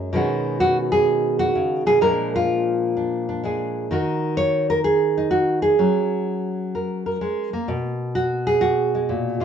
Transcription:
Already playing: F#2 F#3 G#3
0.13 B2 D#3 G#3 C#4 F#4
0.60 F#4
0.92 G#4
1.39 F#4
1.55 C#3
1.86 B2 G#4
2.01 A#2 F3 G#3 D4 A#4
2.36 F4
2.97 D4
3.29 D4
3.43 G#3 D4 G#4
3.91 D#3 D#4 F#4 A#4
4.37 C#5
4.70 A#4
4.84 G#4
5.18 D#4
5.31 F#4
5.62 G#4
5.79 F#3 C#4
6.75 A#4
7.06 A#4
7.21 G#3
7.53 A#3
7.68 B2
8.15 F#4
8.47 G#4
8.61 F#4
8.95 G#3
9.09 A#2
9.40 G#2 F4

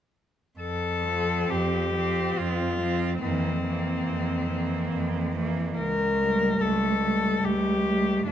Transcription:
0.59 F2 A4
1.04 F3 C4
1.49 F2 G4
1.94 F3 C4
2.37 F2 F4
2.79 F3 C4
3.22 F2 E3 A#3 C4
3.65 E3 A#3
4.08 F2
4.51 E3 A#3
4.93 F2
5.36 E3 A#3
5.77 C#2 A#4
6.20 G3 A3
6.60 C#2 A4
7.03 G3 A3
7.44 C#2 G4
7.86 G3 A3
8.27 D2 F3 A3 D4

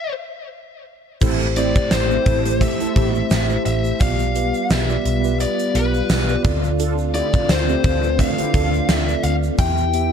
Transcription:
Already playing: E5
1.21 A1 A3 C4 E4 G4 A4 C5, kick, crash, shaker
1.41 shaker
1.56 A3 C4 E4 G4 C5 D5, closed hi-hat, shaker
1.76 kick, shaker
1.91 A1 C5, snare, closed hi-hat, tambourine, shaker
2.10 A3 C4 E4 G4 C5, shaker
2.26 A1 C4 E4 A4, kick, closed hi-hat
2.45 A3 E4 G4 C5, closed hi-hat, shaker
2.61 E5, kick, closed hi-hat, shaker
2.80 C4 E4 A4, closed hi-hat, shaker
2.95 A1 A3 C4 E4 G4 C5, kick, closed hi-hat
3.15 shaker
3.30 A1, snare, closed hi-hat, tambourine, shaker
3.49 A3 E4 G4 C5, shaker
3.65 A1 E5, closed hi-hat
3.84 shaker
4.00 B1 G3 B3 F4 G4 D5 F5, kick, closed hi-hat, shaker
4.19 shaker
4.35 B3 F4 G4 B4, closed hi-hat, shaker
4.54 shaker
4.70 B1 E5, snare, closed hi-hat, tambourine, shaker
4.89 B3 F4 G4 D5, shaker
5.05 B1, closed hi-hat
5.24 B3 F4 G4 B4, shaker
5.40 D5, closed hi-hat, shaker
5.59 closed hi-hat, shaker
5.74 B1 B3 F4 G4 B4 D5, closed hi-hat
5.94 shaker
6.09 B1, snare, closed hi-hat, tambourine, shaker
6.28 B3 F4 G4 D5, shaker
6.44 D2 D3 A3 C4 F4 A4 D5, kick, closed hi-hat
6.64 shaker
6.79 D4 F4 A4, closed hi-hat, shaker
6.98 shaker
7.14 C4 E4 F4 G4 A4 D5 F5, closed hi-hat, shaker
7.33 kick, shaker
7.49 D2 C5, snare, closed hi-hat, tambourine, shaker
7.69 C4 E4 F4 G4 A4 D5, shaker
7.84 D2 C4 D4 F4, kick, closed hi-hat
8.03 C4 F4 A4 B4, shaker
8.19 F5, kick, closed hi-hat, shaker
8.38 C4 E4 G4, closed hi-hat, shaker
8.54 D2 C4 D4 F4 A4 D5, kick, closed hi-hat
8.73 shaker
8.89 D2 E5, snare, closed hi-hat, tambourine, shaker
9.08 C4 F4 A4 D5, shaker
9.23 D2 F5, closed hi-hat
9.43 shaker
9.58 E2 E3 B3 E4 G4 B4 E5 G5, kick, closed hi-hat, shaker
9.77 shaker
9.93 B3 E4 G4 E5, closed hi-hat, shaker

